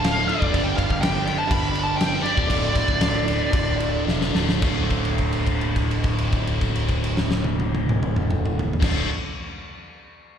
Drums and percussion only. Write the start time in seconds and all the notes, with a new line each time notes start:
0.04 snare, crash
0.29 crash
0.42 kick
0.54 kick, crash
0.78 kick, crash
0.90 kick
1.03 snare, crash
1.27 crash
1.51 kick, crash
1.75 crash
2.01 snare, crash
2.26 crash
2.37 kick
2.50 kick, crash
2.75 kick, crash
2.88 kick
3.01 snare, crash
3.28 crash
3.53 kick, crash
3.80 crash
4.08 snare
4.21 snare
4.35 snare
4.49 snare
4.62 kick, crash
4.90 kick, crash
5.05 crash
5.18 kick, crash
5.33 crash
5.46 kick, crash
5.61 crash
5.76 kick, crash
5.91 crash
6.04 kick, crash
6.18 crash
6.32 kick, crash
6.47 crash
6.61 kick, crash
6.76 crash
6.88 kick, crash
7.04 crash
7.17 snare
7.31 snare
7.44 high tom
7.60 high tom
7.75 high tom
7.89 mid tom
8.03 mid tom
8.16 mid tom
8.31 mid tom
8.46 mid tom
8.59 floor tom
8.73 floor tom
8.82 kick, snare, crash